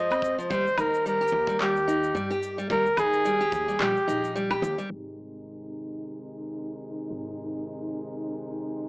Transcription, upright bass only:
0.51 0.71 D#2 medium
0.78 1.27 D#2 medium
1.32 2.10 D#2 medium
2.15 2.65 G2 medium
2.70 2.91 D#2 loud
2.97 3.47 D#2 medium
3.52 3.73 D#2 medium
3.80 3.91 A#1 medium
4.08 4.58 A#1 medium
4.62 4.74 D#2 loud
4.90 7.08 G#1 medium
7.11 8.89 G#1 medium

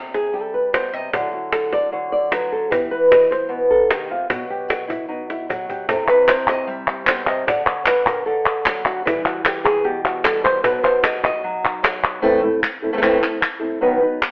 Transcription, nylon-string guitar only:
0.00 0.73 C3 medium
0.14 0.34 G#4 medium
0.33 1.10 G3 medium
0.33 0.53 A4 medium
0.54 0.73 B4 medium
0.73 0.93 B2 medium
0.73 0.93 C5 medium
0.93 1.13 C3 medium
0.93 1.13 D#5 loud
1.13 1.91 D3 medium
1.13 2.30 F#3 soft
1.13 2.70 E4 soft
1.13 1.32 F#4 soft
1.13 1.33 D5 medium
1.33 1.52 F#4 medium
1.53 1.72 A4 medium
1.73 1.92 D5 loud
1.92 2.69 D3 medium
1.92 2.12 C#5 medium
2.12 2.32 D5 loud
2.31 2.71 F#3 medium
2.31 2.51 B4 medium
2.52 2.72 A4 medium
2.71 3.89 E3 medium
2.71 4.28 B3 soft
2.71 2.91 G4 medium
2.91 3.11 B4 medium
3.11 3.30 D#5 loud
3.31 3.51 C5 medium
3.49 4.09 B2 medium
3.49 3.71 B4 medium
3.70 3.91 A4 medium
3.90 4.10 D#3 medium
3.90 4.10 G4 medium
4.10 4.29 C3 medium
4.10 4.30 F4 medium
4.30 5.07 B2 medium
4.30 5.48 F#3 soft
4.30 5.89 B3 soft
4.30 4.50 F#4 medium
4.50 4.68 G4 medium
4.68 4.88 F#4 medium
4.88 5.08 E4 medium
5.08 5.86 B2 medium
5.08 5.29 D#4 medium
5.30 5.49 E4 medium
5.49 5.89 F#3 medium
5.49 5.69 F#4 medium
5.69 5.89 G4 medium
5.89 7.06 C3 medium
5.89 7.45 C4 soft
5.89 7.50 E4 soft
5.89 6.08 A4 medium
6.08 6.28 B4 medium
6.28 6.48 C5 medium
6.48 6.67 D#5 loud
6.67 7.44 G3 medium
6.67 6.87 E5 loud
6.87 7.07 G4 medium
7.06 7.26 B2 medium
7.06 7.27 C5 medium
7.27 7.47 C3 medium
7.27 7.47 D#5 loud
7.47 8.26 D3 medium
7.47 7.66 D5 medium
7.66 7.86 C#5 medium
7.87 8.06 B4 medium
8.06 8.25 A#4 medium
8.26 9.04 D3 medium
8.26 8.86 A4 medium
8.65 9.05 F#3 medium
8.86 9.05 F#4 medium
9.05 10.62 E3 medium
9.05 10.23 G3 soft
9.05 9.25 E4 medium
9.25 9.45 F#4 medium
9.45 9.65 G4 medium
9.64 9.85 G#4 loud
9.84 10.62 B2 medium
9.84 10.04 G4 medium
10.05 10.25 F#4 medium
10.24 10.62 G3 medium
10.24 10.44 A4 medium
10.44 10.63 C5 loud
10.64 12.21 B2 medium
10.64 11.43 F#3 medium
10.64 11.62 D#4 soft
10.64 12.21 F#4 soft
10.64 10.83 B4 medium
10.83 11.03 C5 loud
11.03 11.22 D#5 loud
11.23 11.63 D#5 loud
11.44 11.82 F#3 medium
11.63 12.21 D#4 medium
11.83 12.22 F#3 medium
12.22 12.41 A2 medium
12.22 12.42 E3 medium
12.22 12.42 A3 medium
12.22 12.42 C4 medium
12.22 12.42 E4 medium
12.22 12.41 A4 medium
12.42 12.61 A3 medium
12.42 12.62 C4 medium
12.42 12.62 E4 medium
12.42 12.61 A4 medium
12.62 muted nylon-string guitar stroke medium
12.82 12.91 A3 soft
12.82 12.92 C4 soft
12.82 12.92 E4 medium
12.82 12.92 A4 medium
12.93 12.96 E3 medium
12.93 12.96 A3 medium
12.93 12.97 C4 medium
12.93 12.97 E4 medium
12.93 12.97 A4 medium
12.97 13.01 E3 medium
12.97 13.01 A3 medium
12.97 13.01 C4 medium
12.97 13.01 E4 medium
12.97 13.01 A4 medium
13.02 13.21 A2 medium
13.02 13.21 E3 medium
13.02 13.21 A3 medium
13.02 13.20 C4 medium
13.02 13.20 E4 medium
13.02 13.19 A4 medium
13.20 13.40 A3 soft
13.20 13.40 C4 soft
13.20 13.40 E4 medium
13.20 13.40 A4 soft
13.40 muted nylon-string guitar stroke medium
13.60 13.81 A3 soft
13.60 13.81 C4 soft
13.60 13.80 E4 medium
13.60 13.80 A4 medium
13.81 14.00 B2 medium
13.81 14.01 D#3 medium
13.81 14.00 F#3 medium
13.81 14.01 B3 medium
13.81 13.99 D#4 medium
13.81 13.99 B4 medium
14.00 14.21 F#3 soft
14.00 14.21 B3 medium
14.00 14.20 D#4 medium
14.00 14.20 B4 medium
14.22 muted nylon-string guitar stroke medium

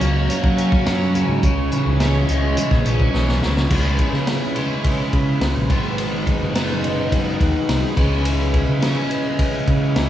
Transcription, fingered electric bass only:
0.00 0.26 C#2 medium
0.44 0.69 F#3 medium
0.86 1.24 F#2 medium
1.28 1.41 G#2 medium
1.43 1.69 C#2 loud
1.86 2.24 C#2 medium
2.28 2.54 C#2 medium
2.71 2.84 A#1 medium
2.85 3.10 A#1 medium
3.13 3.39 B1 medium
3.41 3.67 C#2 medium
3.71 3.96 C#2 medium
4.12 4.38 C#3 medium
5.13 5.38 C#3 medium
5.40 5.53 C#2 medium
5.55 5.68 A#1 medium
5.70 6.37 G#1 medium
6.41 7.36 F#1 medium
7.40 7.53 D#2 medium
7.69 7.81 C2 medium
7.97 8.64 C#2 medium
8.68 8.94 C#3 medium
9.68 9.93 C#3 medium
9.96 10.09 C#2 medium

